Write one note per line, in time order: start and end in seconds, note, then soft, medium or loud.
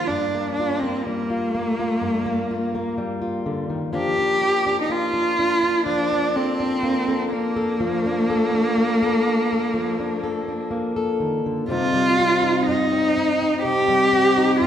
0.00 0.10 F3 soft
0.00 0.34 A#3 soft
0.00 0.12 F4 soft
0.07 2.00 G2 medium
0.07 0.53 D4 medium
0.35 0.83 A#3 soft
0.54 0.81 D4 medium
0.60 1.30 F4 soft
0.79 1.06 C4 medium
0.83 1.54 A#3 soft
1.04 2.97 G3 soft
1.04 2.97 A#3 medium
1.30 1.79 F4 soft
1.55 2.25 A#3 soft
1.79 2.50 F4 soft
2.02 3.94 G2 medium
2.26 2.74 A#3 soft
2.51 3.21 F4 soft
2.75 3.93 A#3 soft
2.98 3.88 G3 soft
3.22 3.94 F4 soft
3.46 3.69 D3 soft
3.70 3.94 D#3 soft
3.93 5.86 F3 medium
3.93 4.89 A#3 soft
3.93 4.18 D4 soft
3.97 4.81 G4 medium
4.19 4.41 D4 soft
4.41 4.66 D4 soft
4.66 5.13 D4 soft
4.81 4.93 D#4 medium
4.89 6.82 A#3 soft
4.89 5.86 F4 medium
5.13 5.39 D4 soft
5.39 5.63 D4 soft
5.63 6.11 D4 soft
5.86 7.79 F3 medium
5.86 6.37 D4 medium
6.12 6.59 D4 soft
6.36 7.31 C4 medium
6.36 7.07 A4 medium
6.60 7.31 D4 soft
6.83 8.76 A#3 soft
7.08 7.55 A4 soft
7.32 10.68 A#3 medium
7.32 8.05 D4 soft
7.56 7.74 A4 soft
7.80 9.73 F3 medium
8.06 8.53 D4 soft
8.30 9.01 A4 medium
8.54 9.26 D4 soft
8.78 10.70 A#3 soft
9.03 9.50 A4 soft
9.27 9.99 D4 soft
9.53 10.22 A4 soft
9.74 11.70 F3 medium
10.00 10.47 D4 soft
10.24 10.95 A4 soft
10.48 11.70 D4 soft
10.71 11.69 A#3 soft
10.96 11.64 A4 soft
11.20 11.45 D#3 soft
11.46 11.68 D3 soft
11.69 12.66 C3 medium
11.69 11.93 G3 medium
11.69 12.18 C4 soft
11.69 12.43 D#4 medium
11.69 12.63 F4 medium
11.93 13.87 G3 medium
12.20 12.91 C4 soft
12.43 13.17 D#4 soft
12.67 13.63 G2 medium
12.67 13.60 D#4 medium
12.93 13.40 C4 soft
13.18 14.36 D#4 medium
13.42 14.12 C4 medium
13.62 14.60 C3 medium
13.62 14.55 G4 medium
13.88 14.67 G3 medium
14.13 14.67 C4 soft
14.38 14.67 D#4 soft
14.61 14.67 G2 medium
14.61 14.67 F4 medium